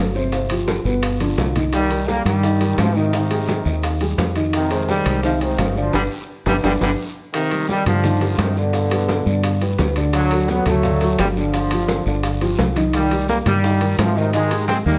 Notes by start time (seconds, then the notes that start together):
Already playing: G1
0.15 C3 C4 C5, high conga, short guiro, maracas
0.32 C3 C4 C5, high bongo, high conga, high timbale, long guiro, maracas
0.50 F3 F4 G4, high bongo, high conga, high timbale, maracas
0.68 high bongo, high conga, low timbale, short guiro, maracas
0.85 G1 B2 B3 B4, high conga, short guiro, maracas
1.02 high bongo, high conga, high timbale, long guiro, maracas
1.20 D3 D4 F4, high bongo, high conga, high timbale, maracas
1.38 C2 D3 D4 F4, high bongo, low bongo, high conga, low timbale, short guiro, maracas
1.55 D#3 D#4 D#5, high bongo, low conga, high timbale, short guiro, maracas
1.72 D#3 G3, high bongo, high conga, high timbale, long guiro, maracas
1.91 G3 G4 A#4, high conga, high timbale, maracas
2.07 G3 A#3, high bongo, high conga, low timbale, short guiro, maracas
2.25 G2 D#3 G3 G4 A#4, high conga, high timbale, short guiro, maracas
2.43 D#3 D#4 D#5, high bongo, long guiro, maracas
2.60 G3 G4 A#4, high timbale, maracas
2.78 G#2 C3 F3, high bongo, low bongo, high conga, high timbale, low timbale, short guiro, maracas
2.95 C3 D#3 D#4 D#5, high conga, short guiro, maracas
3.13 D#3 D#4 D#5, high bongo, high conga, high timbale, long guiro, maracas
3.31 G#3 G4 G#4, high bongo, high conga, high timbale, maracas
3.48 high bongo, high conga, low timbale, short guiro, maracas
3.65 D#2 D#3 D#4 D#5, high conga, short guiro, maracas
3.83 high bongo, high conga, high timbale, long guiro, maracas
4.00 G3 G4 G#4, high bongo, high conga, high timbale, maracas
4.18 F2 G3 G4 G#4, high bongo, low bongo, high conga, low timbale, short guiro, maracas
4.36 D#3 D#4 D#5, high bongo, high timbale, short guiro, maracas
4.53 C3 D#3, high bongo, high conga, high timbale, long guiro, maracas
4.71 G#3 G#4 C5, high conga, high timbale, maracas
4.88 D#3 G3, high bongo, high conga, low timbale, short guiro, maracas
5.06 C2 G#3 G#4 C5, high conga, high timbale, short guiro, maracas
5.23 C3 D#3 F3 D#4 D#5, high bongo, high conga, long guiro, maracas
5.41 C3 D#3 G#3 G#4 C5, high conga, high timbale, maracas
5.58 G1, high bongo, low bongo, high conga, high timbale, low timbale, short guiro, maracas
5.76 D3 F3 D4 D5, high conga, short guiro, maracas
5.93 G1 B2 D3 G3 D4 G4 B4, low bongo, high conga, high timbale, long guiro, maracas
6.46 G1 B2 D3 G3 D4 G4 B4, low bongo, high conga, high timbale, long guiro, maracas
6.63 G1 B2 D3 G3 D4 G4 B4, low bongo, high conga, high timbale, long guiro, maracas
6.80 G1 B2 D3 G3 D4 G4 B4, low bongo, high conga, high timbale, long guiro, maracas
7.33 C3 D#3, high bongo, high conga, high timbale, long guiro, maracas
7.51 G3 G4 A#4, high conga, high timbale, maracas
7.68 D#3 G3, high bongo, high conga, low timbale, short guiro, maracas
7.86 G2 D3 F3 G3 G4 A#4, high conga, low conga, high timbale, short guiro, maracas
8.03 D#3 D#4 D#5, high bongo, high conga, low conga, long guiro, maracas
8.21 G3 G4 A#4, high conga, high timbale, maracas
8.38 G2 C3 D#3, high bongo, low bongo, high conga, high timbale, low timbale, short guiro, maracas
8.56 B2 D3 D4 D5, high conga, short guiro, maracas
8.73 D3 D4 D5, high bongo, high conga, high timbale, long guiro, maracas
8.91 G3 G4 B4, high bongo, high timbale, maracas
9.08 high bongo, high conga, low timbale, short guiro, maracas
9.26 G2 D3 D4 D5, high conga, short guiro, maracas
9.43 high bongo, high conga, high timbale, long guiro, maracas
9.61 G3 G4 B4, high bongo, high conga, high timbale, maracas
9.79 D2 G3 G4 B4, high bongo, low bongo, high conga, low timbale, short guiro, maracas
9.96 D3 D4 D5, high bongo, high timbale, short guiro, maracas
10.13 D3 F#3, high bongo, high conga, high timbale, long guiro, maracas
10.31 F#3 F#4 A4, high conga, high timbale, maracas
10.48 F#3 B3, high bongo, high conga, low timbale, short guiro, maracas
10.65 D2 F#3 A3 F#4 A4, high conga, low conga, high timbale, short guiro, maracas
10.83 D3 D4 D5, high bongo, high conga, low conga, long guiro, maracas
11.01 F#3 F#4 A4, high conga, high timbale, maracas
11.18 G1 D3 G3, high bongo, low bongo, high conga, high timbale, low timbale, short guiro, maracas
11.36 D3 F3 D4 D5, high conga, short guiro, maracas
11.54 D3 D4 D5, high bongo, high conga, high timbale, long guiro, maracas
11.71 F3 F4 G4, high bongo, high conga, high timbale, maracas
11.88 high bongo, high conga, low timbale, short guiro, maracas
12.06 G1 D3 D4 D5, high conga, short guiro, maracas
12.23 high bongo, high conga, high timbale, long guiro, maracas
12.41 F3 F4 G4, high bongo, high conga, high timbale, maracas
12.58 C2 F3 F4, high bongo, low bongo, high conga, low timbale, short guiro, maracas
12.76 D#3 D#4 D#5, high bongo, high conga, high timbale, short guiro, maracas
12.93 D#3 G3, high bongo, high conga, high timbale, long guiro, maracas
13.11 G3 G4 A#4, high timbale, maracas
13.28 G3 A#3, high bongo, high conga, low timbale, short guiro, maracas
13.46 G2 D#3 G3 G4 A#4, high conga, low conga, high timbale, short guiro, maracas
13.63 D#3 D#4 D#5, high bongo, high conga, long guiro, maracas
13.81 G3 G4 A#4, high timbale, maracas
13.98 G#2 C3 F3, high bongo, low bongo, high conga, high timbale, low timbale, short guiro, maracas
14.16 C3 D#3 D#4 D#5, high conga, short guiro, maracas
14.33 D#3 G#3 D#4 D#5, high bongo, high conga, high timbale, long guiro, maracas
14.51 G#3 G4 G#4, high bongo, high conga, high timbale, maracas
14.68 G#3 C4, high bongo, high conga, low timbale, short guiro, maracas
14.85 D#2 D#3 G3 A#3 D#4 D#5, high conga, short guiro, maracas